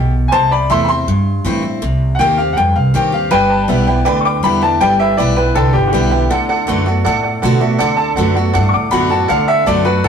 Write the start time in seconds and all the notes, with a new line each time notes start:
Already playing: B1 B2 G4
0.28 C5 G#5
0.32 C2 C3 A5
0.51 D5 B5
0.70 E2 E3 A3 C4 E4 E5 C6
0.84 E4 B5
0.89 C4 C6
1.07 G2
1.45 A2 E3 A3 C4 E4
1.62 C4 E4
1.82 C2 C3
2.15 D#3 F#5
2.19 D#2 A#3 C4 G4 G5
2.37 C4 G4 F5
2.53 F2 F#5 G5
2.58 G2
2.76 C2 F5
2.94 D#2 D#3 A#3 C4 G4 G5
3.12 C4 G4 F5
3.31 G1 G3 B4 D5 G5
3.50 B4 D5 A5
3.68 B1 G3 B3 E4 B4 D5 E5
3.87 B3 E4 B4 D5 G5
4.05 D2 D3 B4 D5 G5
4.21 B4 D5 C#6
4.25 G5 D6
4.43 E2 G3 B3 E4 B4 D5 G5 B5
4.62 B3 E4 B4 D5 G5 A5
4.81 G1 G3 B4 D5 G5
5.00 B4 D5 E5 G5
5.17 B1 G3 B3 E4 B4 D5 G5
5.36 B3 E4 B4 D5 G5
5.55 C2 D3 A4 B4 D5 G5
5.73 G1 G4 B4 D5 G5
5.87 F#4
5.92 B1 G3 B3 E4 G4 B4 D5 G5
6.11 B3 E4 B4 D5 G5
6.30 D2 D3 A4 D5 F#5
6.49 A4 D5 F#5
6.67 F#2 D3 A3 B3 F#4 A4 D5 F#5
6.86 B3 F#4 A4 D5 F#5
7.05 A2 A4 D5 F#5
7.23 A4 D5 F#5
7.42 B2 D3 A3 B3 F#4 A4 D5 F#5
7.61 B3 F#4 A4 D5 E5
7.79 D2 D3 A4 D5 F#5
7.97 A4 D5 A5
8.16 F#2 D3 A3 B3 F#4 A4 D5 F#5
8.35 B3 F#4 A4 D5 F#5
8.53 G2 A2 A4 D5 F#5
8.69 A4 D5 F#5 C#6
8.74 D2 D6
8.91 F#2 D3 A3 B3 F#4 A4 D5 F#5 B5
9.10 B3 F#4 A4 D5 F#5 A5
9.28 D2 D3 A4 D5 F5 F#5
9.47 A4 D5 E5 F#5
9.66 F#2 D3 A3 B3 F#4 A4 D5 A5
9.85 B3 F#4 A4 B4 D5 F#5
10.04 E3 A4 D5 F#5